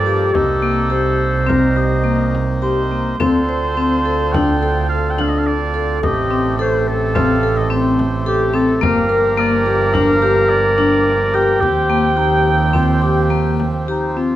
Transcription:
Already playing: G2 F3 A#3 G4 A4 D5
0.06 G4, frame drum
0.33 C2 C3 A#3 D#4 G4 A4, frame drum
0.62 A#3
0.90 G4 C5, frame drum
1.20 frame drum
1.47 C4 A#4, frame drum
1.76 G4 D#5
2.04 A#3, frame drum
2.35 frame drum
2.62 G4 C5
2.91 A#3
3.20 D2 D3 C4 F4 A4 C5, frame drum
3.49 C5
3.77 C4 A4
4.05 A4, frame drum
4.32 D4 G5, frame drum
4.63 A4
4.89 F5
5.10 G5
5.19 D4 F5, frame drum
5.29 D#5
5.38 F5
5.47 D5
5.74 A4, frame drum
6.02 A1 C3 A3 G4 D#5, frame drum
6.31 C4
6.59 A4 C5
6.88 A4, frame drum
7.15 C4 F5, frame drum
7.43 A4
7.57 D#5
7.70 C4 C5, frame drum
7.99 frame drum
8.26 G4 A4
8.54 C4 A4, frame drum
8.76 A4
8.81 G1 F3 A#3 A#4 F5, frame drum
9.09 A#4
9.38 A#3 D5
9.66 G4, frame drum
9.94 D4 F5, frame drum
10.22 G4
10.49 D5, frame drum
10.78 D4, frame drum
11.34 G4 G5
11.61 D#2 F3 C4 G4, frame drum
11.90 A#3
12.17 D#4 G4
12.73 C4 F4, frame drum
13.02 G4
13.30 A#3
13.60 frame drum
13.88 D#4 G4
14.17 C4 F4

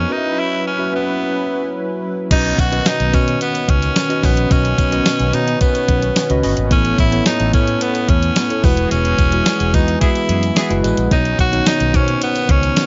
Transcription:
Already playing: B3 C#4 F#4 A#4 C5 C#5 D#5
0.10 F#3 C#4 D#4 E4 F#4 B4 D#5
0.17 E5
0.39 E4
0.67 C#4
0.78 C#4 F#4 B4 E5
0.92 B3 C#4 F#4 B4 E5
2.30 B1 B2 D#3 B3 C#4 D#4 F#4 B4 D#5, kick, closed hi-hat, crash, tambourine
2.45 closed hi-hat
2.58 B1 F#4, kick, closed hi-hat, tambourine
2.71 C#4 F#4 B4 D#5, closed hi-hat
2.86 D#4, snare, closed hi-hat, tambourine
3.00 B1, closed hi-hat
3.13 B2 C#4 F#4 B4 D#5, kick, closed hi-hat, tambourine
3.28 closed hi-hat
3.41 B3, closed hi-hat, tambourine
3.55 closed hi-hat, tambourine
3.69 C#2 C#4, kick, closed hi-hat
3.82 closed hi-hat, tambourine
3.96 snare, closed hi-hat, tambourine
4.09 C#4 F#4 B4 D#5, closed hi-hat
4.23 A#1 B3 C#4 F#4 B4 C#5, kick, open hi-hat, tambourine
4.37 closed hi-hat
4.50 B1 B2 C#4 F#4 B4 D#5, kick, closed hi-hat, tambourine
4.65 closed hi-hat
4.78 B1, kick, closed hi-hat, tambourine
4.91 C#4 F#4 B4 D#5, closed hi-hat, tambourine
5.06 snare, closed hi-hat, tambourine
5.19 B1, closed hi-hat, tambourine
5.33 B2 C#4 D#4 F#4 B4 C#5, closed hi-hat, tambourine
5.48 closed hi-hat
5.61 B3, kick, closed hi-hat, tambourine
5.75 closed hi-hat, tambourine
5.88 B1, kick, closed hi-hat
6.02 closed hi-hat
6.16 snare, closed hi-hat, tambourine
6.30 C#2 C#4 F#4 B4 D#5, closed hi-hat
6.43 G1 C#4 F#4 B4 D#5, open hi-hat, tambourine
6.57 G#1, closed hi-hat
6.71 A1 A2 A3 B3 C#4 E4 A4 C#5, kick, closed hi-hat, tambourine
6.85 closed hi-hat
6.98 A1 E4, kick, closed hi-hat, tambourine
7.12 B3 E4 A4 C#5, closed hi-hat
7.26 D#4, snare, closed hi-hat, tambourine
7.40 A1, closed hi-hat, tambourine
7.53 A2 B3 C#4 E4 A4 C#5, kick, closed hi-hat, tambourine
7.67 closed hi-hat
7.81 B3, closed hi-hat, tambourine
7.95 closed hi-hat, tambourine
8.09 E2 C#4, kick, closed hi-hat
8.23 closed hi-hat
8.36 snare, closed hi-hat, tambourine
8.50 B3 E4 A4 C#5, closed hi-hat
8.63 E1 E3 G#3 B3 E4 F#4 G#4 B4, kick, open hi-hat, tambourine
8.77 closed hi-hat, tambourine
8.91 E1 C#4, closed hi-hat, tambourine
9.05 closed hi-hat
9.19 E1, kick, closed hi-hat, tambourine
9.32 G#3 E4 F#4 G#4, closed hi-hat
9.46 snare, closed hi-hat, tambourine
9.60 E1, closed hi-hat
9.74 E2 G#3 D#4 E4 F#4 B4, kick, closed hi-hat, tambourine
9.88 closed hi-hat
10.01 E3 B3 E4 G#4, kick, closed hi-hat, tambourine
10.15 closed hi-hat, tambourine
10.29 F#2 E3 B3 G#4, closed hi-hat
10.43 closed hi-hat, tambourine
10.56 E3 B3 G#4, snare, closed hi-hat, tambourine
10.70 F#1 G#3 E4 F#4 B4, closed hi-hat
10.83 A1 G#3 E4 F#4 B4, closed hi-hat, tambourine
10.97 A#1, closed hi-hat, tambourine
11.11 B1 B2 D#3 B3 C#4 D#4 F#4 C#5, kick, closed hi-hat, tambourine
11.25 closed hi-hat
11.39 B1 F#4, kick, closed hi-hat, tambourine
11.52 B3 D#4 F#4 C#5, closed hi-hat
11.66 D#4, snare, closed hi-hat, tambourine
11.80 B1, closed hi-hat
11.93 B2 B3 C#4 D#4 F#4 C5, kick, closed hi-hat, tambourine
12.01 C#5
12.08 closed hi-hat
12.22 B3, closed hi-hat, tambourine
12.35 closed hi-hat, tambourine
12.49 C#2 C#4, kick, closed hi-hat
12.63 closed hi-hat, tambourine
12.76 snare, closed hi-hat, tambourine

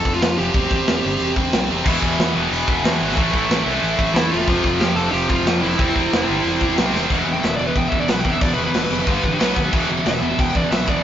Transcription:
Already playing: F2 C3 F3 A4
0.05 F1, kick, open hi-hat
0.14 F4
0.22 F2, snare, open hi-hat
0.38 F1 F2 C3 F3 G4, open hi-hat
0.54 E1 C3 G3 C4, kick, open hi-hat
0.63 snare
0.71 E1, kick, open hi-hat
0.87 E1, snare, open hi-hat
1.03 G1, open hi-hat
1.20 E1, open hi-hat
1.36 E1, kick, open hi-hat
1.52 B1, snare, open hi-hat
1.69 E1 C3 G3 C4, open hi-hat
1.85 E1 E2 B2 E3, kick, crash
2.02 E1, kick, open hi-hat
2.18 E2, snare, open hi-hat
2.33 E1 E2 B2 E3, open hi-hat
2.51 E1, open hi-hat
2.68 E1, kick, open hi-hat
2.83 E2 B2 E3, snare, open hi-hat
3.00 G#1 E2 B2 E3, open hi-hat
3.11 snare
3.16 A1 A2 E3 A3, kick, open hi-hat
3.27 snare
3.34 A1, kick, open hi-hat
3.49 A1, snare, open hi-hat
3.64 C2 A2 E3 A3, open hi-hat
3.82 A1, open hi-hat
3.99 A1, kick, open hi-hat
4.13 E2 A2 E3 A3 E4, snare, open hi-hat
4.31 E1 A2 E3 A3 F4, open hi-hat
4.40 snare
4.47 F1 F2 C3 F3, kick, open hi-hat
4.57 snare
4.64 F1, kick, open hi-hat
4.80 F2 G4, snare, open hi-hat
4.95 F1 F2 C3 F3 A4, open hi-hat
5.12 F1 G4, open hi-hat
5.29 F1 F4, kick, open hi-hat
5.45 F2 C3 F3, snare, open hi-hat
5.62 F1 F2 C3 F3 E4, open hi-hat
5.72 snare
5.79 E1 C3 G3 C4, kick, open hi-hat
5.89 snare
5.96 E1, kick, open hi-hat
6.12 E1, snare, open hi-hat
6.27 G1 C3 G3 C4, open hi-hat
6.44 E1, open hi-hat
6.61 E1, kick, open hi-hat
6.77 B1 C3 G3 C4, snare, open hi-hat
6.93 E1 C3 G3 C4, snare
7.10 E1 E2 B2 E3, kick, crash
7.27 E1 E2 B2, crash
7.33 E2 B2 G5
7.43 E1 E2 B2 E5, snare, crash
7.55 E1 D5, crash
7.60 E2 B2
7.67 E2 B2 B4
7.75 E1 E2 B2 G5, kick, crash
7.88 E1 E2 B2 E5, kick, crash
8.00 E2 B2 D5
8.08 B1 E2 B2 B4, snare, crash
8.20 G5
8.25 E1 E2 B2 E3, kick, crash
8.31 E2 B2 E5
8.41 E1 E2 B2 E3 D5, kick, crash
8.54 E1 B4
8.58 E2 B2, crash
8.64 E2 B2 B4
8.74 E1 E2 B2, snare, crash
8.90 F1 E2 B2, crash
8.99 E2 B2
9.07 G1 G2 D3 G3, kick, crash
9.23 A1 G2 D3, kick, crash
9.32 G2 D3
9.40 B1 B2 F#3 B3, snare, crash
9.56 D#2 B2 F#3, kick, crash
9.64 B2 F#3
9.72 E1 E2 B2 E3, kick, crash
9.89 E1 E2 B2, crash
9.97 E2 B2
10.05 E1 E2 B2 E5, snare, crash
10.21 E1 E2 B2, crash
10.30 E2 B2
10.38 E1 E2 B2 G5, kick, crash
10.55 E1 E2 B2 D5, kick, crash
10.64 E2 B2
10.71 B1 E2 B2 E5, snare, crash
10.86 E1 E2 B2 E3 D5, kick, crash
10.96 E2 B2

